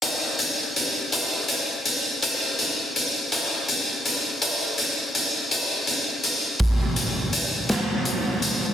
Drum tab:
HH |xxxxxx|xxxxxx|xxxxxx|xxxxxx|
SD |------|------|------|---o--|
BD |------|------|------|o-----|